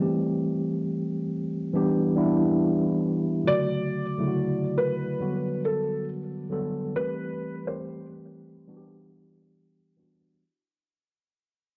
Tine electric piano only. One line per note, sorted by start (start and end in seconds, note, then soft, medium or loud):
0.00 1.24 E3 medium
0.00 1.24 G3 medium
0.00 1.24 A3 medium
0.00 1.25 C4 medium
0.00 1.25 G4 medium
1.73 2.10 E3 medium
1.73 2.11 G3 medium
1.73 2.11 B3 medium
1.73 2.11 D4 medium
1.73 2.12 G4 loud
2.15 3.09 E3 medium
2.15 3.10 G3 medium
2.15 3.10 B3 medium
2.15 3.10 D4 medium
2.15 3.11 E4 loud
3.44 3.93 C#3 medium
3.44 3.92 D3 medium
3.44 3.93 F#3 medium
3.44 3.93 A3 medium
3.44 3.94 F#4 medium
4.18 5.21 C#3 medium
4.18 5.19 D3 medium
4.18 5.19 F#3 medium
4.18 5.21 A3 medium
4.18 4.24 E4 medium
4.27 5.21 F#4 medium
5.20 6.29 D3 medium
5.20 6.29 F#3 medium
5.20 6.30 G3 medium
5.20 6.30 B3 medium
5.20 6.30 F#4 medium
6.50 6.85 D3 medium
6.50 6.85 F#3 medium
6.50 6.85 G3 medium
6.50 6.86 B3 medium
6.50 6.86 A4 loud
6.94 7.41 E3 medium
6.94 7.41 G3 medium
6.94 7.41 A3 medium
6.94 7.42 C4 medium
6.94 7.42 G4 medium
7.65 8.66 E3 medium
7.65 8.67 G3 medium
7.65 8.69 A3 medium
7.65 8.69 C4 medium
7.65 8.69 G4 medium
8.67 9.77 E3 medium
8.67 9.77 G3 medium
8.67 9.78 B3 medium
8.67 9.78 D4 medium
8.67 8.77 F#4 medium
8.77 9.82 G4 loud
9.97 10.32 E3 medium
9.97 10.32 G3 medium
9.97 10.33 B3 medium
9.97 10.33 D4 medium
9.97 10.33 F#4 medium